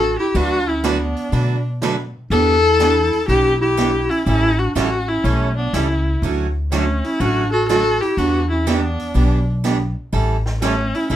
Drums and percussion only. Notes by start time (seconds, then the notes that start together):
0.35 open hi-hat
0.83 snare, closed hi-hat
1.17 open hi-hat
1.33 open hi-hat
1.82 snare, closed hi-hat
2.31 open hi-hat
2.80 snare, closed hi-hat
3.13 open hi-hat
3.29 open hi-hat
3.78 snare, closed hi-hat
4.11 open hi-hat
4.27 open hi-hat
4.76 snare, closed hi-hat
5.25 open hi-hat
5.74 snare, closed hi-hat
6.23 open hi-hat
6.72 snare, closed hi-hat
7.04 open hi-hat
7.20 open hi-hat
7.69 snare, closed hi-hat
8.02 open hi-hat
8.18 open hi-hat
8.67 snare, closed hi-hat
8.99 open hi-hat
9.16 open hi-hat
9.64 snare, closed hi-hat
10.13 open hi-hat
10.46 snare
10.62 snare, closed hi-hat
10.95 open hi-hat
11.10 open hi-hat